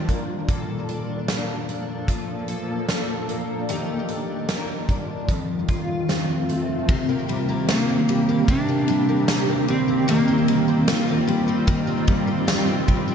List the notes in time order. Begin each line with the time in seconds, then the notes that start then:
Already playing: D#3 F3 G3 D4 F4 G4
0.09 A#3, kick, closed hi-hat
0.49 A#2 F3 A#3 A4, kick, closed hi-hat
0.89 D4, closed hi-hat
1.28 A#3, snare, closed hi-hat
1.69 D4, closed hi-hat
2.08 F3, kick, closed hi-hat
2.48 A4, closed hi-hat
2.89 D4, snare, closed hi-hat
3.29 A#3, closed hi-hat
3.68 D#3 G3 F4 G4, closed hi-hat
4.08 D4, closed hi-hat
4.49 A#3, snare, closed hi-hat
4.89 D4, kick, closed hi-hat
5.28 F2 A3 C4 F4, kick, closed hi-hat
5.68 F4, kick, closed hi-hat
6.09 C4, snare, closed hi-hat
6.49 A3, closed hi-hat
6.88 C3 D#3 A#3 C4 G4, kick, ride
7.09 A#3
7.28 G3, ride
7.49 A#3
7.68 A#3, snare, ride, tambourine
7.89 A#3
8.08 G3, ride
8.29 A#3
8.48 C3 D4, kick, ride
8.68 A#3
8.88 G3, ride
9.09 A#3
9.28 snare, ride, tambourine
9.49 A#3
9.68 G3 C4, ride
9.88 A#3
10.08 D#3 G3 A#3 F4, ride
10.28 C4
10.48 G3, ride
10.68 C4
10.88 F4, snare, ride, tambourine
11.08 C4
11.27 G3, ride
11.48 C4
11.67 D#3, kick, ride
11.87 C4
12.07 G3, kick, ride
12.27 C4
12.47 F4, snare, ride, tambourine
12.67 C4
12.88 G3, kick, ride
13.08 C4